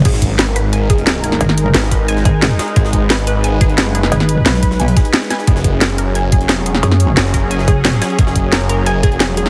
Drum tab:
CC |x---------------|----------------|----------------|----------------|
HH |x-x-xxx-x-xxx-x-|x-x-x-x-x-x-xxxx|x-x-xxx-x-xxx-x-|x-x-x-x-xxxxx-x-|
SD |-o--o-------o--o|-o--ooo--o--o-o-|-o--o-------o--o|-o--oo-o--o-oooo|
BD |o-o-------o-----|------o---o-----|o-o-------o-----|------o---o-----|

CC |----------------|----------------|----------------|
HH |x-x-xxx-x-xxx-x-|x-x-x-x-x-x-xxxx|x-x-xxx-x-xxx-x-|
SD |-o--o-------o--o|-o--ooo--o--o-o-|-o--o-------o--o|
BD |o-o-------o-----|------o---o-----|o-o-------o-----|